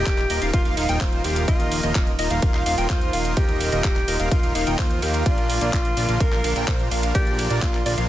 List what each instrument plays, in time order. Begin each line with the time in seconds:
Already playing: analog synth pad D#3 F3 A#3 F4, alto saxophone G4
0.06 analog synth bass D#1, supersaw synth A#3 D#4 F4 A#4, kick, clap, closed hi-hat, ride
0.18 clap, closed hi-hat
0.30 analog synth bass D#1, supersaw synth A#3 D#4 F4 A#4 D#5, digital synth lead D#5, open hi-hat, ride
0.42 analog synth bass D#1, supersaw synth A#3 D#4 F4 A#4 F5, digital synth lead F5, closed hi-hat
0.53 analog synth bass D#1, supersaw synth A#3 D#4 F4 A#4 F5, alto saxophone F4, digital synth lead F5, kick, closed hi-hat, ride
0.65 analog synth bass D#1, supersaw synth A#3 D#4 F4 A#4 F5, digital synth lead F5, closed hi-hat
0.77 analog synth bass D#1, supersaw synth A#3 D#4 F4 A#4 F5, alto saxophone D#4, digital synth lead F5, open hi-hat, ride
0.89 analog synth bass D#1, supersaw synth A#3 D#4 F4 A#4 G5, digital synth lead G5, closed hi-hat
1.01 analog synth bass D#1, supersaw synth A#3 F4 A#4 C5, alto saxophone F4, digital synth lead C5, kick, clap, open hi-hat, ride
1.13 closed hi-hat
1.24 analog synth bass D#1, supersaw synth A#3 D#4 F4 A#4 F5, alto saxophone G4, digital synth lead F5, open hi-hat, ride
1.36 closed hi-hat
1.48 analog synth bass D#1, supersaw synth A#3 D#4 F4 A#4 D#5, analog synth pad D#4, alto saxophone F4, digital synth lead D#5, kick, closed hi-hat, ride
1.60 closed hi-hat
1.72 open hi-hat, ride
1.83 analog synth bass D#1, supersaw synth A#3 D#4 F4 A#4 D#5, digital synth lead D#5, closed hi-hat
1.95 analog synth bass D#1, supersaw synth A#3 D#4 F4 A#4 D#5, digital synth lead D#5, kick, clap, closed hi-hat, ride
2.07 closed hi-hat
2.19 analog synth bass D#1, supersaw synth A#3 D#4 F4 A#4 D#5, digital synth lead D#5, open hi-hat, ride
2.31 analog synth bass D#1, supersaw synth A#3 D#4 F4 A#4 F5, digital synth lead F5, closed hi-hat
2.42 analog synth bass D#1, supersaw synth A#3 D#4 A#4, alto saxophone F4, digital synth lead F5, kick, closed hi-hat, ride
2.54 analog synth bass D#1, supersaw synth A#3 D#4 F4 A#4 F5, digital synth lead F5, clap
2.66 analog synth bass D#1, supersaw synth A#3 D#4 F4 A#4 F5, digital synth lead F5, open hi-hat, ride
2.78 analog synth bass D#1, supersaw synth A#3 D#4 F4 A#4 G5, digital synth lead G5, closed hi-hat
2.90 analog synth bass D#1, supersaw synth A#3 F4, digital synth lead C5, kick, clap, closed hi-hat, ride
3.01 closed hi-hat
3.13 analog synth bass D#1, supersaw synth A#3 D#4 F4 A#4 F5, digital synth lead F5, open hi-hat, ride
3.25 closed hi-hat
3.37 analog synth bass D#1, supersaw synth A#3 D#4 F4 A#4 D#5, alto saxophone G4, digital synth lead D#5, kick, closed hi-hat, ride
3.49 closed hi-hat
3.60 open hi-hat, ride
3.72 analog synth bass D#1, supersaw synth A#3 D#4 F4 A#4 D#5, digital synth lead D#5, closed hi-hat
3.84 analog synth bass D#1, kick, clap, closed hi-hat, ride
3.96 clap, closed hi-hat
4.08 analog synth bass D#1, supersaw synth A#3 D#4 F4 A#4 D#5, digital synth lead D#5, open hi-hat, ride
4.20 analog synth bass D#1, supersaw synth A#3 D#4 F4 A#4 F5, digital synth lead F5, closed hi-hat
4.31 analog synth bass D#1, alto saxophone F4, digital synth lead F5, kick, closed hi-hat, ride
4.43 analog synth bass D#1, supersaw synth A#3 D#4 F4 A#4 F5, digital synth lead F5, closed hi-hat
4.55 analog synth bass D#1, supersaw synth A#3 D#4 F4 A#4 F5, alto saxophone D#4, digital synth lead F5, open hi-hat, ride
4.67 analog synth bass D#1, supersaw synth A#3 D#4 F4 A#4 G5, digital synth lead G5, closed hi-hat
4.79 analog synth bass D#2, supersaw synth A#3 D#4 F4 A#4 C5, alto saxophone F4, digital synth lead C5, kick, clap, open hi-hat, ride
4.91 closed hi-hat
5.02 analog synth bass D#2, supersaw synth A#3 D#4 F4 A#4 F5, alto saxophone G4, digital synth lead F5, open hi-hat, ride
5.14 closed hi-hat
5.26 analog synth bass A#1, analog synth pad D3 F3 F4, supersaw synth D4 D5, alto saxophone F4, digital synth lead D5, kick, closed hi-hat, ride
5.38 closed hi-hat
5.50 open hi-hat, ride
5.61 analog synth bass A#1, supersaw synth A#3 D4 F4 A#4 D5, digital synth lead D5, closed hi-hat
5.73 analog synth bass A#1, supersaw synth A#3 D4 F4 A#4, kick, clap, closed hi-hat, ride
5.85 closed hi-hat
5.97 analog synth bass A#1, supersaw synth A#3 D4 F4 A#4 D5, digital synth lead D5, open hi-hat, ride
6.09 analog synth bass A#1, supersaw synth A#3 D4 F4 A#4 F5, digital synth lead F5, closed hi-hat
6.20 analog synth bass A#1, supersaw synth D4 F4 F5, alto saxophone A#4, digital synth lead F5, kick, closed hi-hat, ride
6.32 analog synth bass A#1, supersaw synth A#3 D4 F4 A#4 F5, digital synth lead F5, clap
6.44 analog synth bass A#1, supersaw synth A#3 D4 F4 A#4 F5, digital synth lead F5, open hi-hat, ride
6.56 analog synth bass A#1, supersaw synth A#3 D4 F4 A#4 G5, digital synth lead G5, closed hi-hat
6.68 analog synth bass A#1, supersaw synth A#3 A#4 C5, digital synth lead C5, kick, clap, closed hi-hat, ride
6.80 closed hi-hat
6.91 analog synth bass A#1, supersaw synth A#3 D4 F4 A#4 F5, digital synth lead F5, open hi-hat, ride
7.03 closed hi-hat
7.15 analog synth bass A#1, supersaw synth A#3 D4 F4 A#4 D5, alto saxophone G4, digital synth lead D5, kick, closed hi-hat, ride
7.27 closed hi-hat
7.39 open hi-hat, ride
7.50 analog synth bass A#1, supersaw synth A#3 D4 F4 A#4 D5, digital synth lead D5, closed hi-hat
7.62 analog synth bass A#1, supersaw synth A#3, alto saxophone F4, kick, clap, closed hi-hat, ride
7.74 clap, closed hi-hat
7.86 analog synth bass A#1, supersaw synth A#3 D4 F4 A#4 D5, digital synth lead D5, open hi-hat, ride
7.98 analog synth bass A#1, supersaw synth A#3 D4 F4 A#4 F5, digital synth lead F5, closed hi-hat